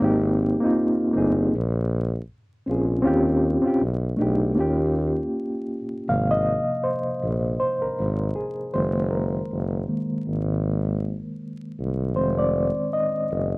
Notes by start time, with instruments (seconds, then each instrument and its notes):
0.00 tuba G#1, reed electric piano A#3 C4 D#4
0.04 reed electric piano G4
0.60 reed electric piano A#3 C4 D#4
0.65 reed electric piano F4
1.13 tuba G1, reed electric piano A#3 C4 D#4
1.18 reed electric piano G#4
1.53 tuba A#1
2.66 tuba A#1, reed electric piano C4 C#4 F4
2.71 reed electric piano G#4
3.02 tuba D#2, reed electric piano C4 C#4 F4
3.07 reed electric piano G4
3.62 reed electric piano C4 C#4 F4
3.67 reed electric piano G4
3.81 tuba B1
4.17 tuba B1, reed electric piano A3 D4 D#4
4.22 reed electric piano G4
4.55 tuba D#2, reed electric piano A#3 C#4 F4
4.60 reed electric piano G4
6.08 tuba G#1, reed electric piano C3 F3 A#3 F5
6.31 reed electric piano D#5
6.84 reed electric piano C5
7.23 tuba A#1
7.60 reed electric piano C5
7.82 tuba G#1, reed electric piano A#4
7.99 tuba G#1
8.35 reed electric piano G#4
8.74 tuba F#1, reed electric piano D#3 G#3 A#3 C5
9.11 reed electric piano A#4
9.52 tuba F#1
9.88 reed electric piano D#3 G#3 A#3
10.27 tuba G#1
11.79 tuba C2
12.16 tuba F1, reed electric piano D#3 G#3 C4 C5
12.39 reed electric piano D5
12.93 reed electric piano D#5
13.31 tuba F#1